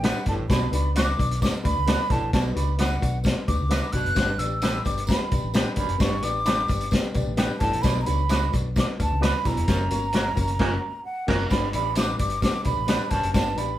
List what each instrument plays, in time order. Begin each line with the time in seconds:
Already playing: fingered electric bass A1
0.03 grand piano B3 D4 G4 E5, clean electric guitar D4 G4 B4, flute F#5, snare, closed hi-hat, tambourine
0.26 fingered electric bass G1, baritone saxophone A2, grand piano B3 D4 G4 D5, flute A5, kick, snare, closed hi-hat, tambourine
0.39 fingered electric bass A1
0.49 fingered electric bass B1, baritone saxophone B2, grand piano B3 D4 F#4 D5, flute B5, kick, snare, closed hi-hat, tambourine
0.72 fingered electric bass C#2, grand piano B3 D4 F#4 D5, flute B5, closed hi-hat, tambourine
0.95 grand piano B3 D4 F#4 D5, clean electric guitar D4 F#4 B4, flute D6, snare, closed hi-hat, tambourine
1.17 fingered electric bass B1, grand piano B3 D4 F#4 D5, kick, closed hi-hat, tambourine
1.31 closed hi-hat
1.41 grand piano B3 D4 F#4 D5, flute D6, kick, snare, closed hi-hat, tambourine
1.63 fingered electric bass D2, grand piano B3 D4 F#4 D5, flute B5, kick, closed hi-hat, tambourine
1.75 fingered electric bass C#2
1.87 grand piano B3 D4 F#4 D5, clean electric guitar D4 F#4 B4, snare, closed hi-hat, tambourine
2.10 fingered electric bass B1, baritone saxophone A2, grand piano B3 D4 F#4 D5, flute A5, kick, snare, closed hi-hat, tambourine
2.22 fingered electric bass A1
2.33 fingered electric bass B1, baritone saxophone B2, grand piano B3 D4 F#4 D5, flute A5, kick, snare, closed hi-hat, tambourine
2.54 fingered electric bass C#2, grand piano B3 D4 F#4 D5, flute B5, closed hi-hat, tambourine
2.77 grand piano B3 D4 F#4 D5, clean electric guitar D4 F#4 B4, flute F#5, snare, closed hi-hat, tambourine
3.01 fingered electric bass B1, grand piano B3 D4 F#4 D5, kick, closed hi-hat, tambourine
3.24 grand piano B3 D4 F#4 D5, kick, snare, closed hi-hat, tambourine
3.48 fingered electric bass D2, grand piano B3 D4 F#4 B4, flute D6, kick, closed hi-hat, tambourine
3.60 fingered electric bass C#2
3.69 grand piano B3 D4 F#4 E5, clean electric guitar D4 F#4 B4, snare, closed hi-hat, tambourine
3.92 fingered electric bass B1, baritone saxophone B2, grand piano B3 D4 F#4 D5, flute F#6, kick, closed hi-hat, tambourine
4.05 fingered electric bass F#1, closed hi-hat
4.15 fingered electric bass G1, baritone saxophone G2, grand piano B3 D4 G4 D5, kick, snare, closed hi-hat, tambourine
4.39 fingered electric bass A1, grand piano B3 D4 G4 D5, flute E6, closed hi-hat, tambourine
4.62 grand piano B3 D4 G4 A4, clean electric guitar D4 G4 B4, snare, closed hi-hat, tambourine
4.84 fingered electric bass G1, grand piano B3 D4 G4 D5, flute D6, kick, closed hi-hat, tambourine
4.98 closed hi-hat
5.07 grand piano B3 D4 G4 B4, flute B5, kick, snare, closed hi-hat, tambourine
5.31 fingered electric bass B1, grand piano B3 D4 G4 D5, kick, closed hi-hat, tambourine
5.43 fingered electric bass A1
5.53 grand piano B3 D4 G4 D5, clean electric guitar D4 G4 B4, snare, closed hi-hat, tambourine
5.76 fingered electric bass G1, baritone saxophone F#2, grand piano B3 D4 G4 D5, flute B5, kick, closed hi-hat, tambourine
5.89 fingered electric bass F#1, closed hi-hat
5.98 fingered electric bass G1, baritone saxophone G2, grand piano B3 D4 G4 D5, flute C#6, kick, snare, closed hi-hat, tambourine
6.22 fingered electric bass A1, grand piano B3 D4 G4 D5, flute D6, closed hi-hat, tambourine
6.45 grand piano B3 D4 G4 D5, clean electric guitar D4 G4 B4, snare, closed hi-hat, tambourine
6.68 fingered electric bass G1, grand piano B3 D4 G4 D5, kick, closed hi-hat, tambourine
6.81 closed hi-hat
6.91 grand piano B3 D4 G4 D5, kick, snare, closed hi-hat, tambourine
7.14 fingered electric bass B1, grand piano B3 D4 G4 D5, kick, closed hi-hat, tambourine
7.27 fingered electric bass A1
7.37 grand piano B3 D4 G4 D5, clean electric guitar D4 G4 B4, flute G5, snare, closed hi-hat, tambourine
7.59 fingered electric bass G1, baritone saxophone A2, grand piano B3 D4 G4 D5, flute A5, kick, snare, closed hi-hat, tambourine
7.73 fingered electric bass A1, closed hi-hat
7.82 fingered electric bass B1, baritone saxophone B2, grand piano B3 D4 F#4 D5, flute B5, kick, snare, closed hi-hat, tambourine
8.01 flute A#5
8.06 fingered electric bass C#2, grand piano B3 D4 F#4 C#5, flute B5, closed hi-hat, tambourine
8.29 grand piano B3 D4 F#4 C#5, clean electric guitar D4 F#4 B4, snare, closed hi-hat, tambourine
8.52 fingered electric bass B1, grand piano B3 D4 F#4 D5, kick, closed hi-hat, tambourine
8.76 grand piano B3 D4 F#4 D5, flute D6, kick, snare, closed hi-hat, tambourine
8.99 fingered electric bass D2, grand piano B3 D4 F#4 C#5, flute A5, kick, closed hi-hat, tambourine
9.12 fingered electric bass C#2
9.21 grand piano B3 D4 F#4 D5, clean electric guitar D4 F#4 B4, flute B5, snare, closed hi-hat, tambourine
9.44 fingered electric bass B1, baritone saxophone E2, grand piano B3 D4 F#4 D5, flute A#5, kick, snare, closed hi-hat, tambourine
9.57 fingered electric bass E1, closed hi-hat
9.68 fingered electric bass F#1, baritone saxophone F#2, grand piano A#3 C#4 F#4 C#5, kick, snare, closed hi-hat, tambourine
9.90 fingered electric bass G1, grand piano A#3 C#4 F#4 C#5, closed hi-hat, tambourine
10.12 grand piano A#3 C#4 F#4 C#5, clean electric guitar C#4 F#4 A#4, snare, closed hi-hat, tambourine
10.35 fingered electric bass F#1, grand piano A#3 C#4 F#4 C#5, kick, closed hi-hat, tambourine
10.47 closed hi-hat
10.59 fingered electric bass F#1, baritone saxophone A#2, grand piano A#3 C#4 F#4 A#4, clean electric guitar C#4 F#4 A#4, kick, snare, crash
11.05 flute F#5
11.27 fingered electric bass F#1, baritone saxophone A#2, grand piano A#3 C#4 F#4 A#4, clean electric guitar C#4 F#4 A#4, flute A#5, kick, snare, crash
11.50 fingered electric bass G1, baritone saxophone G2, grand piano B3 D4 G4 D5, flute B5, kick, snare, closed hi-hat, tambourine
11.73 fingered electric bass A1, grand piano B3 D4 G4 D5, flute B5, closed hi-hat, tambourine
11.95 grand piano B3 D4 G4 E5, clean electric guitar D4 G4 B4, flute D6, snare, closed hi-hat, tambourine
12.18 fingered electric bass G1, grand piano B3 D4 G4 D5, flute D6, kick, closed hi-hat, tambourine
12.30 closed hi-hat
12.42 grand piano B3 D4 G4 A4, flute D6, kick, snare, closed hi-hat, tambourine
12.64 fingered electric bass B1, grand piano B3 D4 G4 D5, flute B5, kick, closed hi-hat, tambourine
12.77 fingered electric bass A1
12.87 grand piano B3 D4 G4 D5, clean electric guitar D4 G4 B4, snare, closed hi-hat, tambourine
13.10 fingered electric bass G1, baritone saxophone F#2, grand piano B3 D4 G4 C#5, flute A5, kick, snare, closed hi-hat, tambourine
13.22 fingered electric bass F#1, closed hi-hat
13.33 fingered electric bass G1, baritone saxophone G2, grand piano B3 D4 G4 D5, flute A5, kick, snare, closed hi-hat, tambourine
13.56 fingered electric bass A1, grand piano B3 D4 G4 D5, flute B5, closed hi-hat, tambourine